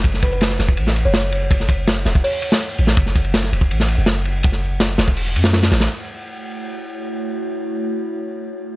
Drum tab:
RD |x-xxx-x-x-x-x-x-|x-x-x-x--xx-x-x-|x-xxx-x-x-x-x-x-|x---x-x--xx-xxxx|
HH |----------------|--------o-------|----------------|--------o-------|
SD |-o--ooo--o--o---|-o--o-o----o---o|-o--oo---o--o---|-o--o-o----ooooo|
BD |o-o----o--------|o-o----o--------|o-o----o--------|o------o--------|

RD |----------------|----------------|
HH |----------------|----------------|
SD |----------------|----------------|
BD |----------------|----------------|